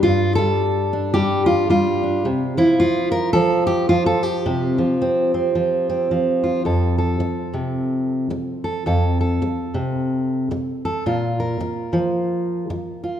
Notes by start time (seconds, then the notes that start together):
0.03 G2 F4
0.35 G3 A4
0.93 D4
1.14 G3 G4
1.46 F4
1.70 G3 F4
2.04 D4
2.25 C3
2.57 F3 E4
2.80 F4
3.12 A#4
3.33 F3 A4
3.67 G4
3.89 F3 F4
4.06 A4
4.23 G4
4.46 C3
4.78 F3
5.02 C4
5.34 C4
5.55 F3
5.90 C4
6.11 F3
6.44 F4
6.65 F2 A4
6.98 A4
7.20 muted steel-string acoustic guitar stroke
7.54 C3
8.30 muted steel-string acoustic guitar stroke
8.64 A4
8.86 F2 A4
9.21 A4
9.42 muted steel-string acoustic guitar stroke
9.74 C3
10.51 muted steel-string acoustic guitar stroke
10.85 A4
11.06 A#2 F4
11.40 A#4
11.60 muted steel-string acoustic guitar stroke
11.93 F3
12.70 muted steel-string acoustic guitar stroke
13.04 F4